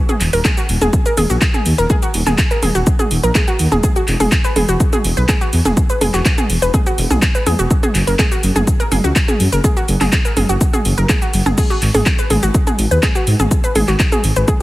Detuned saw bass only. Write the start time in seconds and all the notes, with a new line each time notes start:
0.21 D#1
0.33 D#1
0.69 D#1
0.81 D#1
1.17 D#1
1.30 A#1
1.66 D#2
1.78 D#1
2.14 D#1
2.27 D#1
2.62 D#1
2.75 D#1
3.11 D#1
3.23 A#1
3.59 D#2
3.72 D#1
4.08 E1
4.20 E1
4.56 E1
4.69 E1
5.04 E1
5.17 B1
5.53 E2
5.65 E1
6.01 E1
6.14 E1
6.50 E1
6.62 E1
6.98 E1
7.11 B1
7.46 E2
7.59 E1
7.95 F#1
8.07 F#1
8.43 F#1
8.56 F#1
8.92 F#1
9.04 C#2
9.40 F#2
9.52 F#1
9.88 F#1
10.01 F#1
10.37 F#1
10.49 F#1
10.85 F#1
10.98 F#1
11.34 F#1
11.46 F#1
11.82 G#1
11.94 G#1
12.30 G#1
12.43 G#1
12.79 G#1
12.91 D#2
13.27 G#2
13.40 G#1
13.75 G#1
13.88 G#1
14.24 G#1
14.36 G#1